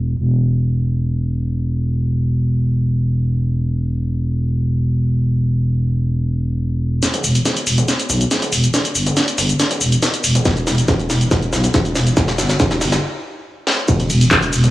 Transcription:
Already playing: E1
0.17 E1
7.03 snare, closed hi-hat, shaker
7.14 closed hi-hat, mid tom, shaker
7.24 E1, open hi-hat, shaker
7.35 closed hi-hat, shaker
7.45 snare, closed hi-hat, mid tom, shaker
7.57 closed hi-hat, shaker
7.67 E1, open hi-hat, shaker
7.78 closed hi-hat, mid tom, shaker
7.88 snare, closed hi-hat, shaker
8.00 closed hi-hat, shaker
8.10 B1, open hi-hat, mid tom, shaker
8.21 closed hi-hat, shaker
8.31 snare, closed hi-hat, shaker
8.42 closed hi-hat, mid tom, shaker
8.52 E1, open hi-hat, shaker
8.64 closed hi-hat, shaker
8.74 snare, closed hi-hat, mid tom, shaker
8.85 closed hi-hat, shaker
8.95 G1, open hi-hat, shaker
9.07 closed hi-hat, mid tom, shaker
9.17 snare, closed hi-hat, shaker
9.28 closed hi-hat, shaker
9.38 G1, open hi-hat, mid tom, shaker
9.49 closed hi-hat, shaker
9.60 snare, closed hi-hat, shaker
9.71 closed hi-hat, mid tom, shaker
9.81 E1, open hi-hat, shaker
9.92 closed hi-hat, shaker
10.03 snare, closed hi-hat, mid tom, shaker
10.14 closed hi-hat, shaker
10.24 E1, open hi-hat, shaker
10.35 closed hi-hat, mid tom, shaker
10.45 kick, snare, closed hi-hat, shaker
10.57 closed hi-hat, shaker
10.67 E1, snare, open hi-hat, mid tom, shaker
10.78 closed hi-hat, shaker
10.88 kick, snare, closed hi-hat, shaker
11.00 closed hi-hat, mid tom, shaker
11.10 E1, snare, open hi-hat, shaker
11.21 closed hi-hat, shaker
11.31 kick, snare, closed hi-hat, mid tom, shaker
11.42 closed hi-hat, shaker
11.53 B1, snare, open hi-hat, shaker
11.64 closed hi-hat, mid tom, shaker
11.74 kick, snare, closed hi-hat, shaker
11.85 closed hi-hat, shaker
11.95 E1, snare, open hi-hat, mid tom, shaker
12.07 closed hi-hat, shaker
12.17 kick, snare, closed hi-hat, shaker
12.28 snare, closed hi-hat, mid tom, shaker
12.38 G1, snare, open hi-hat, shaker
12.49 snare, closed hi-hat, shaker
12.60 kick, snare, closed hi-hat, mid tom, shaker
12.71 snare, closed hi-hat, shaker
12.81 G1, snare, open hi-hat, shaker
12.92 snare, closed hi-hat, mid tom, shaker
13.67 snare
13.88 kick, closed hi-hat, ride, shaker
14.00 closed hi-hat, mid tom, shaker
14.10 E1, open hi-hat, ride, shaker
14.21 closed hi-hat, shaker
14.31 kick, clap, closed hi-hat, mid tom, ride, shaker
14.42 closed hi-hat, shaker
14.53 E1, open hi-hat, ride, shaker
14.64 closed hi-hat, mid tom, shaker

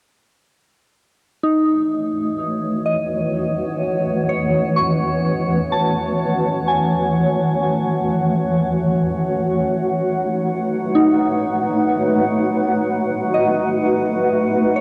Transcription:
1.43 A3 D#4
1.53 E3
1.74 C#5
1.80 F#4
2.59 F#5
2.86 D#5
4.29 C#5
4.76 C#6
5.72 A5
6.68 G#5
9.59 D#4
10.10 B4
10.95 D#4
13.34 D#5
14.76 C#5

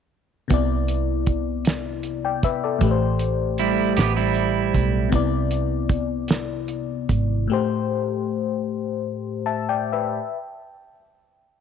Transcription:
0.48 C2 C3 B3 E4, kick, closed hi-hat
0.54 D5
0.88 closed hi-hat
1.27 kick, closed hi-hat
1.65 snare, closed hi-hat
2.03 closed hi-hat
2.25 D5 G5
2.43 B4 E5, kick, closed hi-hat
2.64 A4 D5
2.79 A1 A2 A3, kick, closed hi-hat
2.83 G4 B4
2.91 C5
3.19 closed hi-hat
3.58 G3 E4, closed hi-hat
3.97 A1 B3 G4, snare, closed hi-hat
4.16 G3 E4
4.34 closed hi-hat
4.74 B1, kick, closed hi-hat
5.09 C3 B3, kick, closed hi-hat
5.13 C2 E4 D5
5.51 closed hi-hat
5.89 kick, closed hi-hat
6.28 snare, closed hi-hat
6.68 closed hi-hat
7.09 G#1, kick, closed hi-hat
7.47 A2 A3
7.51 G4 C5
9.46 E5 A5
9.69 D5 G5
9.92 B4 E5

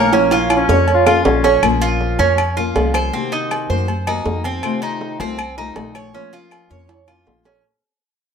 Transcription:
Already playing: A#1 D#3 A3 A#3 C4 F4 C#5
0.13 F3 A#3 C#4 F4, high timbale
0.31 C#4 F4, high timbale, low agogo
0.50 high timbale, low agogo, claves
0.57 C#4
0.69 F2 A#3 C#4 F4 C#5, low timbale
0.88 muted steel-string acoustic guitar stroke, low agogo
0.94 F4
1.06 A#3 C#4 F4, low timbale, low agogo, claves
1.25 A#1 F3 A#3 C#4 F4, low timbale
1.44 C#4, low timbale, low agogo
1.63 A#1 F3 A#3 C#4 F4, low agogo, claves
1.82 F4, low agogo
2.01 low timbale
2.19 F2 A#3 C#4 F4, low agogo
2.38 muted steel-string acoustic guitar stroke, low agogo, claves
2.57 A#3 C#4 F4
2.76 C2 F3 A#3 C#4 F4, low timbale, low agogo
2.94 C5, low agogo, claves
3.13 C3 D#3 A#3 C4 F#4
3.32 D#4, low agogo
3.51 low timbale, low agogo, claves
3.70 F#2 D#3 A#3 C4 F#4 C5
3.88 muted steel-string acoustic guitar stroke, low agogo
4.07 D#3 A#3 C4 D#4 F#4, low agogo, claves
4.26 F2 D#3 A#3 C4 F#4, low timbale
4.44 C4, low agogo
4.63 C3 D#3 A3 C4 F4, low agogo, claves
4.82 D#4, low agogo
5.01 low timbale
5.20 C2 D#3 A3 C4 F4, low agogo
5.39 muted steel-string acoustic guitar stroke, low agogo, claves
5.57 D#3 A3 C4 D#4 F4
5.76 A#1 D#3 A3 C4 F4, low timbale, low agogo
5.95 C#5, low agogo, claves
6.13 F3 A#3 C#4 F4
6.33 F4, low agogo
6.51 low timbale, low agogo, claves
6.70 F2 A#3 C#4 F4 C#5
6.89 muted steel-string acoustic guitar stroke, high timbale, low agogo
7.07 A#3 C#4 F4, high timbale, low agogo, claves
7.26 A#1 F3 A#3 C#4 F4, low timbale
7.45 C#4, low timbale, low agogo

